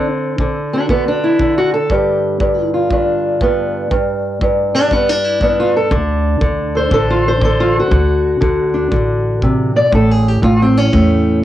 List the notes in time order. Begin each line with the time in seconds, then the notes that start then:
Already playing: D3 C4
0.39 D3, kick
0.73 D4 F#4
0.89 D3 B3, kick
1.08 D4
1.24 E4
1.40 D3, kick
1.58 F#4
1.74 A4
1.90 G2 G4, kick
2.40 G2, kick
2.74 F4
2.91 G2 D4, kick
3.41 G2 B3, kick
3.91 G2, kick
4.41 G2, kick
4.75 D4 G4
4.91 G2 B3, kick
5.09 D4
5.24 E4
5.41 G2 B3, kick
5.60 F4
5.77 A4
5.91 D2 D3 D4, kick
6.41 D2 D3, kick
6.75 A4 C5
6.91 A1 D3 A4, kick
7.10 F4
7.28 C5
7.41 D3 A4, kick
7.60 F4
7.79 F#4
7.91 D2 D3, kick
8.41 D2 D3, kick
8.74 D4
8.91 A1 D3, kick
9.42 C3, kick
9.76 B2 D5
9.92 A1 A2 A4, kick
10.11 G#4
10.28 G4
10.42 A1 A2 F4, kick
10.62 C4
10.77 C#4
10.93 E2 A2 A3, kick